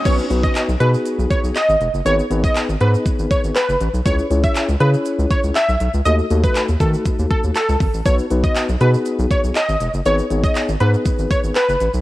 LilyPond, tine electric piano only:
\new Staff \with { instrumentName = "Tine electric piano" } { \time 4/4 \key b \mixolydian \tempo 4 = 120 <b dis' fis' b'>8 <b dis' fis' b'>8. r16 <b dis' fis' gis'>4. r4 | <b dis' gis' b'>8 <b dis' gis' b'>8. r16 <b dis' gis' b'>4. r4 | <cis' e' gis' cis''>8 <cis' e' gis' cis''>8. r16 <cis' e' gis' cis''>4. r4 | <a dis' fis' a'>8 <a dis' fis' a'>8. r16 <a dis' fis' a'>4. r4 |
<b dis' fis' b'>8 <b dis' fis' b'>8. r16 <b dis' fis' gis'>4. r4 | <b dis' gis' b'>8 <b dis' gis' cis''>8. r16 <b dis' gis' b'>4. r4 | }